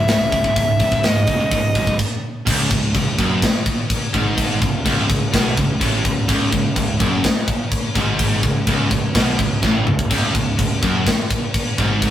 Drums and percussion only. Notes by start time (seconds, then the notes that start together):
0.08 snare, open hi-hat
0.32 kick, open hi-hat
0.44 kick
0.56 kick, open hi-hat
0.79 kick, open hi-hat
0.92 kick
1.04 snare, open hi-hat
1.27 kick, open hi-hat
1.51 kick, open hi-hat
1.75 kick, open hi-hat
1.87 kick
1.99 kick, crash
2.47 kick, crash
2.71 kick, crash
2.95 kick, crash
3.19 kick, crash
3.42 kick, snare, crash
3.66 kick, crash
3.90 kick, crash
4.14 kick, crash
4.38 kick, crash
4.62 kick, crash
4.86 kick, crash
5.10 kick, crash
5.34 kick, snare, crash
5.57 kick, crash
5.81 kick, crash
6.05 kick, crash
6.29 kick, crash
6.52 kick, crash
6.76 kick, crash
7.00 kick, crash
7.24 kick, snare, crash
7.48 kick, crash
7.72 kick, crash
7.95 kick, crash
8.19 kick, crash
8.43 kick, crash
8.67 kick, crash
8.91 kick, crash
9.15 kick, snare, crash
9.39 kick, crash
9.63 kick, snare
9.87 mid tom
9.99 kick
10.11 kick, splash, crash
10.35 kick, crash
10.59 kick, crash
10.83 kick, crash
11.07 kick, snare, crash
11.31 kick, crash
11.54 kick, crash
11.78 kick, crash
12.02 kick, crash